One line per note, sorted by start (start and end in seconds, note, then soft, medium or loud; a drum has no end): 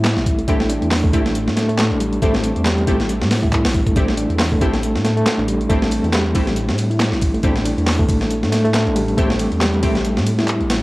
0.00 0.18 A2 medium
0.00 2.00 G3 loud
0.00 0.38 A3 medium
0.00 2.34 C4 medium
0.00 3.43 E4 loud
0.04 snare loud
0.04 clap loud
0.04 closed hi-hat medium
0.04 closed hi-hat soft
0.17 0.44 A1 loud
0.17 snare soft
0.17 closed hi-hat soft
0.26 kick medium
0.26 closed hi-hat medium
0.38 0.43 A3 medium
0.38 closed hi-hat soft
0.48 0.77 A1 loud
0.48 0.58 A3 medium
0.48 0.58 C4 medium
0.48 0.60 D4 medium
0.48 0.58 E4 medium
0.48 0.58 G4 medium
0.48 kick loud
0.48 closed hi-hat medium
0.48 closed hi-hat soft
0.60 0.68 A3 medium
0.60 snare soft
0.60 closed hi-hat soft
0.69 0.80 D4 medium
0.69 closed hi-hat medium
0.82 1.15 E2 loud
0.82 closed hi-hat soft
0.91 snare loud
0.91 clap loud
0.91 closed hi-hat soft
0.91 open hi-hat medium
1.03 1.08 A3 loud
1.03 kick loud
1.03 closed hi-hat soft
1.13 1.49 A1 medium
1.13 1.23 A3 medium
1.13 1.23 C4 medium
1.13 1.23 E4 medium
1.13 1.23 G4 medium
1.13 kick loud
1.13 closed hi-hat medium
1.25 1.30 A3 medium
1.25 snare soft
1.25 closed hi-hat soft
1.35 closed hi-hat soft
1.35 closed hi-hat medium
1.47 1.93 A2 medium
1.47 snare soft
1.47 closed hi-hat soft
1.56 1.67 A3 loud
1.56 snare medium
1.56 closed hi-hat medium
1.69 1.77 A3 loud
1.69 closed hi-hat soft
1.78 1.89 A3 medium
1.78 snare loud
1.78 clap loud
1.78 closed hi-hat soft
1.78 closed hi-hat medium
1.91 2.18 A1 loud
1.91 1.99 D4 medium
1.91 closed hi-hat soft
2.00 2.21 G3 loud
2.00 closed hi-hat medium
2.13 closed hi-hat soft
2.22 2.51 A1 loud
2.22 2.33 A3 loud
2.22 2.32 A3 medium
2.22 2.32 C4 medium
2.22 2.32 E4 medium
2.22 2.32 G4 medium
2.22 kick loud
2.22 closed hi-hat soft
2.22 closed hi-hat medium
2.34 2.64 C4 medium
2.34 snare medium
2.34 closed hi-hat soft
2.44 closed hi-hat medium
2.56 2.89 E2 loud
2.56 closed hi-hat soft
2.65 2.77 G3 loud
2.65 snare loud
2.65 clap loud
2.65 closed hi-hat soft
2.65 closed hi-hat medium
2.78 closed hi-hat soft
2.87 3.23 A1 medium
2.87 2.94 A3 medium
2.87 2.97 A3 medium
2.87 2.97 C4 medium
2.87 2.97 E4 medium
2.87 2.97 G4 medium
2.87 kick loud
2.87 closed hi-hat medium
3.00 snare soft
3.00 closed hi-hat soft
3.09 closed hi-hat soft
3.09 closed hi-hat medium
3.21 3.66 A2 medium
3.21 snare medium
3.21 closed hi-hat soft
3.31 snare loud
3.31 closed hi-hat medium
3.31 open hi-hat medium
3.43 3.52 E4 loud
3.43 kick medium
3.43 closed hi-hat soft
3.53 kick medium
3.53 clap loud
3.53 closed hi-hat medium
3.53 closed hi-hat soft
3.65 3.92 A1 loud
3.65 snare loud
3.65 closed hi-hat soft
3.65 open hi-hat medium
3.74 kick medium
3.74 closed hi-hat medium
3.87 3.91 A3 medium
3.87 kick medium
3.87 closed hi-hat medium
3.87 closed hi-hat soft
3.96 4.25 A1 loud
3.96 4.06 A3 medium
3.96 4.06 C4 medium
3.96 4.08 D4 medium
3.96 4.06 E4 medium
3.96 4.06 G4 medium
3.96 kick loud
3.96 closed hi-hat soft
3.96 closed hi-hat medium
4.08 4.16 A3 medium
4.08 snare soft
4.08 closed hi-hat soft
4.17 4.28 D4 medium
4.17 closed hi-hat medium
4.30 4.63 E2 loud
4.30 closed hi-hat soft
4.39 snare loud
4.39 clap loud
4.39 closed hi-hat soft
4.39 open hi-hat medium
4.52 4.57 A3 loud
4.52 kick loud
4.52 closed hi-hat soft
4.61 4.96 A1 medium
4.61 4.71 A3 medium
4.61 4.71 C4 medium
4.61 4.71 E4 medium
4.61 4.71 G4 medium
4.61 kick medium
4.61 closed hi-hat medium
4.73 4.78 A3 medium
4.73 snare soft
4.73 closed hi-hat soft
4.83 closed hi-hat soft
4.83 closed hi-hat medium
4.95 5.22 A2 medium
4.95 snare soft
4.95 closed hi-hat soft
5.05 5.15 A3 loud
5.05 snare medium
5.05 closed hi-hat medium
5.17 5.25 A3 loud
5.17 closed hi-hat soft
5.26 5.37 A3 medium
5.26 snare loud
5.26 clap loud
5.26 closed hi-hat medium
5.26 closed hi-hat soft
5.38 5.66 A1 medium
5.38 5.47 D4 medium
5.38 closed hi-hat soft
5.48 5.69 G3 loud
5.48 closed hi-hat medium
5.61 closed hi-hat soft
5.69 5.99 A1 loud
5.69 5.81 A3 loud
5.69 5.80 A3 medium
5.69 5.80 C4 medium
5.69 5.80 E4 medium
5.69 5.80 G4 medium
5.69 kick loud
5.69 closed hi-hat medium
5.69 closed hi-hat soft
5.82 6.12 C4 medium
5.82 snare medium
5.82 closed hi-hat soft
5.91 closed hi-hat medium
5.91 ride medium
6.03 6.36 E2 loud
6.03 closed hi-hat soft
6.13 6.25 G3 loud
6.13 snare loud
6.13 clap loud
6.13 closed hi-hat medium
6.13 closed hi-hat soft
6.26 closed hi-hat soft
6.35 6.70 A1 loud
6.35 6.41 A3 medium
6.35 6.45 A3 medium
6.35 6.45 C4 medium
6.35 6.45 E4 medium
6.35 6.45 G4 medium
6.35 kick loud
6.35 closed hi-hat medium
6.35 ride medium
6.47 snare soft
6.47 closed hi-hat soft
6.56 closed hi-hat loud
6.56 closed hi-hat soft
6.69 7.14 A2 medium
6.69 snare medium
6.69 closed hi-hat soft
6.78 closed hi-hat medium
6.78 ride medium
6.90 6.99 E4 loud
6.90 closed hi-hat soft
7.00 snare loud
7.00 clap loud
7.00 closed hi-hat medium
7.00 closed hi-hat soft
7.12 7.40 A1 loud
7.12 snare soft
7.12 closed hi-hat soft
7.21 kick medium
7.21 closed hi-hat medium
7.21 ride medium
7.34 7.39 A3 medium
7.34 closed hi-hat soft
7.43 7.73 A1 loud
7.43 7.54 A3 medium
7.43 7.54 C4 medium
7.43 7.55 D4 medium
7.43 7.54 E4 medium
7.43 7.54 G4 medium
7.43 kick loud
7.43 closed hi-hat medium
7.43 closed hi-hat soft
7.56 7.64 A3 medium
7.56 snare soft
7.56 closed hi-hat soft
7.65 7.76 D4 medium
7.65 closed hi-hat medium
7.65 ride medium
7.78 8.10 E2 loud
7.78 closed hi-hat soft
7.87 snare loud
7.87 clap loud
7.87 closed hi-hat soft
7.87 open hi-hat medium
7.99 8.04 A3 loud
7.99 kick loud
7.99 closed hi-hat soft
8.09 8.45 A1 loud
8.09 kick loud
8.09 closed hi-hat medium
8.09 ride medium
8.21 8.26 A3 medium
8.21 snare soft
8.21 closed hi-hat soft
8.30 closed hi-hat medium
8.30 closed hi-hat soft
8.43 8.88 A2 medium
8.43 snare soft
8.43 closed hi-hat soft
8.52 8.63 A3 loud
8.52 snare medium
8.52 closed hi-hat medium
8.52 ride medium
8.64 8.73 A3 loud
8.64 closed hi-hat soft
8.74 8.85 A3 medium
8.74 snare loud
8.74 clap loud
8.74 closed hi-hat medium
8.74 closed hi-hat soft
8.86 9.14 A1 loud
8.86 8.95 D4 medium
8.86 closed hi-hat soft
8.95 9.16 G3 loud
8.95 closed hi-hat medium
8.95 ride medium
9.08 closed hi-hat soft
9.17 9.47 A1 loud
9.17 9.29 A3 loud
9.17 9.28 A3 medium
9.17 9.28 C4 medium
9.17 9.28 E4 medium
9.17 9.28 G4 medium
9.17 kick loud
9.17 closed hi-hat medium
9.17 closed hi-hat soft
9.30 9.60 C4 medium
9.30 snare medium
9.30 closed hi-hat soft
9.39 closed hi-hat medium
9.39 ride medium
9.52 9.84 E2 loud
9.52 closed hi-hat soft
9.61 9.73 G3 loud
9.61 snare loud
9.61 clap loud
9.61 closed hi-hat soft
9.61 closed hi-hat medium
9.74 closed hi-hat soft
9.83 10.19 A1 loud
9.83 9.89 A3 medium
9.83 9.93 A3 medium
9.83 9.93 C4 medium
9.83 9.93 E4 medium
9.83 9.93 G4 medium
9.83 kick medium
9.83 closed hi-hat medium
9.83 ride medium
9.95 snare soft
9.95 closed hi-hat soft
10.05 closed hi-hat medium
10.05 closed hi-hat soft
10.17 10.62 A2 medium
10.17 snare medium
10.17 closed hi-hat soft
10.26 closed hi-hat medium
10.26 ride medium
10.38 10.47 E4 loud
10.38 snare soft
10.38 closed hi-hat soft
10.48 clap loud
10.48 closed hi-hat soft
10.48 closed hi-hat medium
10.60 10.83 A1 loud
10.60 closed hi-hat soft
10.70 snare loud
10.70 closed hi-hat medium
10.70 ride medium